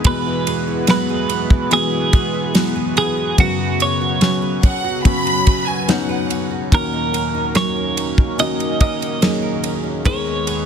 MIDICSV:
0, 0, Header, 1, 7, 480
1, 0, Start_track
1, 0, Tempo, 833333
1, 29, Time_signature, 4, 2, 24, 8
1, 6138, End_track
2, 0, Start_track
2, 0, Title_t, "Violin section"
2, 0, Program_c, 0, 48
2, 2665, Note_on_c, 0, 78, 95
2, 2890, Note_off_c, 0, 78, 0
2, 2900, Note_on_c, 0, 83, 123
2, 3242, Note_off_c, 0, 83, 0
2, 3259, Note_on_c, 0, 80, 102
2, 3384, Note_off_c, 0, 80, 0
2, 3385, Note_on_c, 0, 78, 81
2, 3747, Note_off_c, 0, 78, 0
2, 6138, End_track
3, 0, Start_track
3, 0, Title_t, "Clean electric guitar"
3, 0, Program_c, 1, 27
3, 39, Note_on_c, 1, 71, 92
3, 491, Note_off_c, 1, 71, 0
3, 521, Note_on_c, 1, 71, 92
3, 996, Note_off_c, 1, 71, 0
3, 998, Note_on_c, 1, 68, 99
3, 1709, Note_off_c, 1, 68, 0
3, 1716, Note_on_c, 1, 68, 101
3, 1936, Note_off_c, 1, 68, 0
3, 1958, Note_on_c, 1, 66, 106
3, 2201, Note_off_c, 1, 66, 0
3, 2201, Note_on_c, 1, 73, 97
3, 2652, Note_off_c, 1, 73, 0
3, 3885, Note_on_c, 1, 70, 98
3, 4356, Note_off_c, 1, 70, 0
3, 4358, Note_on_c, 1, 73, 102
3, 4835, Note_off_c, 1, 73, 0
3, 4838, Note_on_c, 1, 75, 111
3, 5069, Note_off_c, 1, 75, 0
3, 5076, Note_on_c, 1, 75, 98
3, 5770, Note_off_c, 1, 75, 0
3, 5797, Note_on_c, 1, 73, 111
3, 6138, Note_off_c, 1, 73, 0
3, 6138, End_track
4, 0, Start_track
4, 0, Title_t, "Nylon-string guitar"
4, 0, Program_c, 2, 24
4, 0, Note_on_c, 2, 56, 66
4, 0, Note_on_c, 2, 59, 57
4, 0, Note_on_c, 2, 63, 61
4, 0, Note_on_c, 2, 68, 66
4, 30, Note_on_c, 2, 52, 82
4, 78, Note_off_c, 2, 63, 0
4, 151, Note_on_c, 2, 64, 61
4, 267, Note_off_c, 2, 68, 0
4, 269, Note_on_c, 2, 68, 69
4, 384, Note_off_c, 2, 64, 0
4, 391, Note_on_c, 2, 64, 61
4, 509, Note_off_c, 2, 56, 0
4, 511, Note_on_c, 2, 54, 69
4, 622, Note_off_c, 2, 68, 0
4, 629, Note_on_c, 2, 68, 66
4, 742, Note_off_c, 2, 59, 0
4, 744, Note_on_c, 2, 59, 64
4, 858, Note_off_c, 2, 64, 0
4, 865, Note_on_c, 2, 64, 68
4, 977, Note_off_c, 2, 52, 0
4, 984, Note_on_c, 2, 52, 82
4, 1097, Note_off_c, 2, 64, 0
4, 1104, Note_on_c, 2, 64, 59
4, 1221, Note_off_c, 2, 68, 0
4, 1228, Note_on_c, 2, 68, 66
4, 1340, Note_off_c, 2, 64, 0
4, 1347, Note_on_c, 2, 64, 64
4, 1461, Note_off_c, 2, 54, 0
4, 1463, Note_on_c, 2, 54, 66
4, 1580, Note_off_c, 2, 68, 0
4, 1587, Note_on_c, 2, 68, 73
4, 1704, Note_off_c, 2, 59, 0
4, 1706, Note_on_c, 2, 59, 55
4, 1821, Note_off_c, 2, 64, 0
4, 1828, Note_on_c, 2, 64, 58
4, 1949, Note_off_c, 2, 54, 0
4, 1952, Note_on_c, 2, 54, 90
4, 1995, Note_off_c, 2, 52, 0
4, 1996, Note_off_c, 2, 64, 0
4, 1996, Note_off_c, 2, 68, 0
4, 2067, Note_on_c, 2, 66, 59
4, 2193, Note_on_c, 2, 71, 64
4, 2309, Note_off_c, 2, 66, 0
4, 2311, Note_on_c, 2, 66, 65
4, 2427, Note_off_c, 2, 59, 0
4, 2429, Note_on_c, 2, 61, 66
4, 2540, Note_off_c, 2, 71, 0
4, 2547, Note_on_c, 2, 71, 65
4, 2666, Note_off_c, 2, 61, 0
4, 2668, Note_on_c, 2, 61, 57
4, 2787, Note_off_c, 2, 66, 0
4, 2790, Note_on_c, 2, 66, 62
4, 2909, Note_off_c, 2, 54, 0
4, 2911, Note_on_c, 2, 54, 85
4, 3030, Note_off_c, 2, 66, 0
4, 3032, Note_on_c, 2, 66, 59
4, 3140, Note_off_c, 2, 71, 0
4, 3147, Note_on_c, 2, 71, 66
4, 3269, Note_off_c, 2, 66, 0
4, 3272, Note_on_c, 2, 66, 60
4, 3386, Note_off_c, 2, 61, 0
4, 3389, Note_on_c, 2, 61, 69
4, 3500, Note_off_c, 2, 71, 0
4, 3507, Note_on_c, 2, 71, 72
4, 3624, Note_off_c, 2, 61, 0
4, 3626, Note_on_c, 2, 61, 60
4, 3746, Note_off_c, 2, 66, 0
4, 3748, Note_on_c, 2, 66, 55
4, 3870, Note_on_c, 2, 51, 83
4, 3916, Note_off_c, 2, 71, 0
4, 3989, Note_off_c, 2, 66, 0
4, 3992, Note_on_c, 2, 63, 62
4, 4009, Note_off_c, 2, 61, 0
4, 4110, Note_on_c, 2, 70, 68
4, 4229, Note_off_c, 2, 63, 0
4, 4231, Note_on_c, 2, 63, 65
4, 4346, Note_off_c, 2, 54, 0
4, 4348, Note_on_c, 2, 54, 67
4, 4465, Note_off_c, 2, 70, 0
4, 4472, Note_on_c, 2, 70, 62
4, 4590, Note_on_c, 2, 61, 54
4, 4706, Note_off_c, 2, 63, 0
4, 4708, Note_on_c, 2, 63, 61
4, 4826, Note_off_c, 2, 51, 0
4, 4828, Note_on_c, 2, 51, 84
4, 4946, Note_off_c, 2, 63, 0
4, 4948, Note_on_c, 2, 63, 61
4, 5065, Note_off_c, 2, 70, 0
4, 5072, Note_on_c, 2, 70, 70
4, 5186, Note_off_c, 2, 63, 0
4, 5188, Note_on_c, 2, 63, 59
4, 5298, Note_off_c, 2, 54, 0
4, 5305, Note_on_c, 2, 54, 69
4, 5420, Note_off_c, 2, 70, 0
4, 5427, Note_on_c, 2, 70, 69
4, 5539, Note_off_c, 2, 61, 0
4, 5546, Note_on_c, 2, 61, 58
4, 5664, Note_off_c, 2, 63, 0
4, 5666, Note_on_c, 2, 63, 60
4, 5784, Note_off_c, 2, 51, 0
4, 5787, Note_on_c, 2, 51, 78
4, 5835, Note_off_c, 2, 54, 0
4, 5836, Note_off_c, 2, 61, 0
4, 5836, Note_off_c, 2, 70, 0
4, 5909, Note_off_c, 2, 63, 0
4, 5911, Note_on_c, 2, 63, 61
4, 6030, Note_on_c, 2, 68, 65
4, 6138, Note_off_c, 2, 51, 0
4, 6138, Note_off_c, 2, 63, 0
4, 6138, Note_off_c, 2, 68, 0
4, 6138, End_track
5, 0, Start_track
5, 0, Title_t, "Felt piano"
5, 0, Program_c, 3, 0
5, 0, Control_c, 3, 64, 127
5, 24, Note_on_c, 3, 56, 72
5, 26, Note_on_c, 3, 59, 65
5, 28, Note_on_c, 3, 40, 60
5, 29, Note_on_c, 3, 47, 69
5, 31, Note_on_c, 3, 64, 63
5, 31, Note_on_c, 3, 66, 76
5, 36, Control_c, 3, 64, 0
5, 148, Control_c, 3, 64, 127
5, 483, Note_off_c, 3, 56, 0
5, 483, Note_off_c, 3, 59, 0
5, 486, Note_off_c, 3, 64, 0
5, 486, Note_off_c, 3, 66, 0
5, 507, Note_on_c, 3, 56, 70
5, 509, Note_on_c, 3, 59, 65
5, 512, Note_on_c, 3, 64, 70
5, 514, Note_on_c, 3, 68, 82
5, 964, Note_off_c, 3, 56, 0
5, 965, Note_off_c, 3, 59, 0
5, 966, Note_off_c, 3, 64, 0
5, 968, Note_off_c, 3, 68, 0
5, 979, Note_on_c, 3, 56, 76
5, 981, Note_on_c, 3, 59, 72
5, 983, Note_on_c, 3, 64, 74
5, 986, Note_on_c, 3, 66, 89
5, 1440, Note_off_c, 3, 56, 0
5, 1441, Note_off_c, 3, 59, 0
5, 1442, Note_off_c, 3, 64, 0
5, 1444, Note_off_c, 3, 66, 0
5, 1461, Note_on_c, 3, 56, 75
5, 1462, Note_on_c, 3, 59, 70
5, 1464, Note_on_c, 3, 64, 64
5, 1468, Note_on_c, 3, 66, 84
5, 1921, Note_off_c, 3, 56, 0
5, 1922, Note_off_c, 3, 59, 0
5, 1923, Note_off_c, 3, 64, 0
5, 1924, Note_off_c, 3, 66, 0
5, 1926, Note_off_c, 3, 40, 0
5, 1926, Note_off_c, 3, 47, 0
5, 1948, Note_on_c, 3, 54, 74
5, 1949, Note_on_c, 3, 59, 70
5, 1950, Note_on_c, 3, 42, 60
5, 1950, Note_on_c, 3, 49, 63
5, 1953, Note_on_c, 3, 61, 66
5, 1953, Note_on_c, 3, 66, 82
5, 1958, Control_c, 3, 64, 0
5, 2074, Control_c, 3, 64, 127
5, 2405, Note_off_c, 3, 54, 0
5, 2405, Note_off_c, 3, 59, 0
5, 2407, Note_off_c, 3, 61, 0
5, 2407, Note_off_c, 3, 66, 0
5, 2427, Note_on_c, 3, 54, 68
5, 2430, Note_on_c, 3, 59, 65
5, 2431, Note_on_c, 3, 61, 57
5, 2434, Note_on_c, 3, 66, 81
5, 2884, Note_off_c, 3, 54, 0
5, 2885, Note_off_c, 3, 59, 0
5, 2886, Note_off_c, 3, 61, 0
5, 2888, Note_off_c, 3, 66, 0
5, 2907, Note_on_c, 3, 54, 88
5, 2911, Note_on_c, 3, 59, 81
5, 2913, Note_on_c, 3, 61, 83
5, 2914, Note_on_c, 3, 66, 98
5, 3364, Note_off_c, 3, 54, 0
5, 3366, Note_off_c, 3, 59, 0
5, 3367, Note_off_c, 3, 61, 0
5, 3368, Note_off_c, 3, 66, 0
5, 3388, Note_on_c, 3, 54, 90
5, 3391, Note_on_c, 3, 59, 84
5, 3392, Note_on_c, 3, 61, 87
5, 3396, Note_on_c, 3, 63, 98
5, 3845, Note_off_c, 3, 54, 0
5, 3846, Note_off_c, 3, 59, 0
5, 3847, Note_off_c, 3, 42, 0
5, 3847, Note_off_c, 3, 49, 0
5, 3847, Note_off_c, 3, 61, 0
5, 3848, Note_off_c, 3, 63, 0
5, 3870, Note_on_c, 3, 58, 73
5, 3873, Note_on_c, 3, 39, 56
5, 3873, Note_on_c, 3, 46, 61
5, 3873, Note_on_c, 3, 61, 62
5, 3874, Note_on_c, 3, 63, 65
5, 3875, Note_on_c, 3, 66, 77
5, 3876, Control_c, 3, 64, 0
5, 3978, Control_c, 3, 64, 127
5, 4325, Note_off_c, 3, 58, 0
5, 4327, Note_off_c, 3, 61, 0
5, 4328, Note_off_c, 3, 63, 0
5, 4328, Note_off_c, 3, 66, 0
5, 4354, Note_on_c, 3, 58, 71
5, 4354, Note_on_c, 3, 61, 65
5, 4357, Note_on_c, 3, 63, 58
5, 4359, Note_on_c, 3, 66, 75
5, 4808, Note_off_c, 3, 58, 0
5, 4808, Note_off_c, 3, 61, 0
5, 4809, Note_off_c, 3, 63, 0
5, 4810, Note_off_c, 3, 66, 0
5, 4831, Note_on_c, 3, 58, 73
5, 4834, Note_on_c, 3, 61, 70
5, 4834, Note_on_c, 3, 63, 70
5, 4837, Note_on_c, 3, 66, 87
5, 5286, Note_off_c, 3, 58, 0
5, 5288, Note_off_c, 3, 61, 0
5, 5288, Note_off_c, 3, 63, 0
5, 5289, Note_off_c, 3, 66, 0
5, 5311, Note_on_c, 3, 58, 77
5, 5311, Note_on_c, 3, 61, 67
5, 5314, Note_on_c, 3, 63, 65
5, 5317, Note_on_c, 3, 68, 78
5, 5766, Note_off_c, 3, 58, 0
5, 5766, Note_off_c, 3, 61, 0
5, 5768, Note_off_c, 3, 39, 0
5, 5768, Note_off_c, 3, 46, 0
5, 5768, Note_off_c, 3, 63, 0
5, 5769, Note_off_c, 3, 68, 0
5, 5792, Note_on_c, 3, 56, 75
5, 5794, Note_on_c, 3, 39, 61
5, 5795, Note_on_c, 3, 59, 68
5, 5796, Control_c, 3, 64, 0
5, 5797, Note_on_c, 3, 51, 62
5, 5797, Note_on_c, 3, 63, 68
5, 5797, Note_on_c, 3, 68, 74
5, 5895, Control_c, 3, 64, 127
5, 6138, Note_off_c, 3, 39, 0
5, 6138, Note_off_c, 3, 51, 0
5, 6138, Note_off_c, 3, 56, 0
5, 6138, Note_off_c, 3, 59, 0
5, 6138, Note_off_c, 3, 63, 0
5, 6138, Note_off_c, 3, 68, 0
5, 6138, End_track
6, 0, Start_track
6, 0, Title_t, "Analog synth pad"
6, 0, Program_c, 4, 89
6, 0, Note_on_c, 4, 56, 70
6, 0, Note_on_c, 4, 59, 68
6, 0, Note_on_c, 4, 71, 85
6, 31, Note_on_c, 4, 66, 73
6, 32, Note_on_c, 4, 52, 80
6, 1926, Note_off_c, 4, 56, 0
6, 1931, Note_off_c, 4, 52, 0
6, 1950, Note_on_c, 4, 49, 84
6, 1951, Note_on_c, 4, 54, 77
6, 3846, Note_off_c, 4, 59, 0
6, 3848, Note_off_c, 4, 71, 0
6, 3850, Note_off_c, 4, 49, 0
6, 3851, Note_off_c, 4, 54, 0
6, 3866, Note_on_c, 4, 51, 71
6, 3868, Note_on_c, 4, 58, 73
6, 3868, Note_on_c, 4, 70, 89
6, 3869, Note_on_c, 4, 61, 71
6, 5767, Note_off_c, 4, 66, 0
6, 5769, Note_off_c, 4, 58, 0
6, 5769, Note_off_c, 4, 70, 0
6, 5770, Note_off_c, 4, 61, 0
6, 5791, Note_on_c, 4, 59, 72
6, 5792, Note_on_c, 4, 68, 69
6, 5792, Note_on_c, 4, 71, 94
6, 5793, Note_on_c, 4, 56, 74
6, 6138, Note_off_c, 4, 51, 0
6, 6138, Note_off_c, 4, 56, 0
6, 6138, Note_off_c, 4, 59, 0
6, 6138, Note_off_c, 4, 68, 0
6, 6138, Note_off_c, 4, 71, 0
6, 6138, End_track
7, 0, Start_track
7, 0, Title_t, "Drums"
7, 26, Note_on_c, 9, 51, 94
7, 28, Note_on_c, 9, 36, 125
7, 84, Note_off_c, 9, 51, 0
7, 86, Note_off_c, 9, 36, 0
7, 270, Note_on_c, 9, 51, 67
7, 328, Note_off_c, 9, 51, 0
7, 503, Note_on_c, 9, 51, 80
7, 508, Note_on_c, 9, 38, 126
7, 560, Note_off_c, 9, 51, 0
7, 566, Note_off_c, 9, 38, 0
7, 746, Note_on_c, 9, 51, 66
7, 804, Note_off_c, 9, 51, 0
7, 867, Note_on_c, 9, 36, 102
7, 924, Note_off_c, 9, 36, 0
7, 986, Note_on_c, 9, 51, 69
7, 1044, Note_off_c, 9, 51, 0
7, 1227, Note_on_c, 9, 51, 64
7, 1229, Note_on_c, 9, 36, 111
7, 1285, Note_off_c, 9, 51, 0
7, 1286, Note_off_c, 9, 36, 0
7, 1467, Note_on_c, 9, 51, 85
7, 1470, Note_on_c, 9, 38, 109
7, 1525, Note_off_c, 9, 51, 0
7, 1528, Note_off_c, 9, 38, 0
7, 1710, Note_on_c, 9, 51, 56
7, 1768, Note_off_c, 9, 51, 0
7, 1948, Note_on_c, 9, 51, 87
7, 1949, Note_on_c, 9, 36, 115
7, 2006, Note_off_c, 9, 36, 0
7, 2006, Note_off_c, 9, 51, 0
7, 2190, Note_on_c, 9, 51, 65
7, 2247, Note_off_c, 9, 51, 0
7, 2426, Note_on_c, 9, 51, 72
7, 2432, Note_on_c, 9, 38, 127
7, 2484, Note_off_c, 9, 51, 0
7, 2489, Note_off_c, 9, 38, 0
7, 2669, Note_on_c, 9, 36, 103
7, 2669, Note_on_c, 9, 51, 64
7, 2726, Note_off_c, 9, 51, 0
7, 2727, Note_off_c, 9, 36, 0
7, 2910, Note_on_c, 9, 36, 99
7, 2910, Note_on_c, 9, 51, 75
7, 2967, Note_off_c, 9, 36, 0
7, 2967, Note_off_c, 9, 51, 0
7, 3034, Note_on_c, 9, 51, 38
7, 3091, Note_off_c, 9, 51, 0
7, 3149, Note_on_c, 9, 51, 70
7, 3151, Note_on_c, 9, 36, 102
7, 3207, Note_off_c, 9, 51, 0
7, 3208, Note_off_c, 9, 36, 0
7, 3391, Note_on_c, 9, 51, 73
7, 3393, Note_on_c, 9, 38, 103
7, 3448, Note_off_c, 9, 51, 0
7, 3451, Note_off_c, 9, 38, 0
7, 3632, Note_on_c, 9, 51, 55
7, 3689, Note_off_c, 9, 51, 0
7, 3871, Note_on_c, 9, 36, 116
7, 3873, Note_on_c, 9, 51, 88
7, 3929, Note_off_c, 9, 36, 0
7, 3930, Note_off_c, 9, 51, 0
7, 4114, Note_on_c, 9, 51, 61
7, 4171, Note_off_c, 9, 51, 0
7, 4349, Note_on_c, 9, 51, 67
7, 4355, Note_on_c, 9, 38, 127
7, 4406, Note_off_c, 9, 51, 0
7, 4412, Note_off_c, 9, 38, 0
7, 4593, Note_on_c, 9, 51, 72
7, 4651, Note_off_c, 9, 51, 0
7, 4712, Note_on_c, 9, 36, 101
7, 4769, Note_off_c, 9, 36, 0
7, 4833, Note_on_c, 9, 51, 68
7, 4891, Note_off_c, 9, 51, 0
7, 4954, Note_on_c, 9, 51, 37
7, 5012, Note_off_c, 9, 51, 0
7, 5072, Note_on_c, 9, 36, 104
7, 5072, Note_on_c, 9, 51, 73
7, 5130, Note_off_c, 9, 36, 0
7, 5130, Note_off_c, 9, 51, 0
7, 5197, Note_on_c, 9, 51, 42
7, 5255, Note_off_c, 9, 51, 0
7, 5312, Note_on_c, 9, 51, 77
7, 5315, Note_on_c, 9, 38, 100
7, 5369, Note_off_c, 9, 51, 0
7, 5372, Note_off_c, 9, 38, 0
7, 5551, Note_on_c, 9, 51, 59
7, 5608, Note_off_c, 9, 51, 0
7, 5792, Note_on_c, 9, 36, 110
7, 5792, Note_on_c, 9, 51, 85
7, 5849, Note_off_c, 9, 36, 0
7, 5850, Note_off_c, 9, 51, 0
7, 6032, Note_on_c, 9, 51, 62
7, 6089, Note_off_c, 9, 51, 0
7, 6138, End_track
0, 0, End_of_file